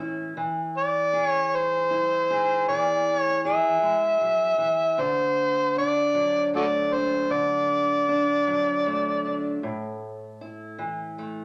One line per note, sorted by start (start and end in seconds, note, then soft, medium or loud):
0.00 0.33 A2 medium
0.00 0.36 E3 medium
0.00 0.33 C#4 soft
0.00 0.33 E4 soft
0.37 2.68 E3 medium
0.78 1.28 D5 medium
1.13 2.29 G#4 medium
1.28 1.57 C#5 medium
1.55 2.68 C5 medium
1.91 4.94 E4 soft
2.31 3.44 G#4 medium
2.68 3.82 E3 medium
2.68 3.18 D5 medium
3.18 3.41 C#5 medium
3.45 4.94 G#4 medium
3.45 5.02 E5 loud
3.82 4.21 G#3 medium
4.21 4.58 F#3 medium
4.58 4.98 E3 medium
4.98 7.29 D3 medium
4.98 5.77 C5 medium
5.77 6.91 D4 medium
5.77 6.50 D5 medium
6.14 8.46 F#3 medium
6.54 8.86 A3 medium
6.54 6.65 F#4 medium
6.54 6.65 A4 medium
6.54 6.95 D5 medium
6.92 8.08 D4 medium
6.92 7.34 C5 medium
7.30 9.57 D3 medium
7.30 9.63 D5 medium
8.09 9.24 D4 medium
8.47 9.58 F#3 medium
8.86 11.17 A3 medium
9.26 9.59 D4 medium
9.63 11.45 A2 medium
10.41 11.45 E4 medium
10.78 11.45 E3 medium
11.18 11.45 A3 medium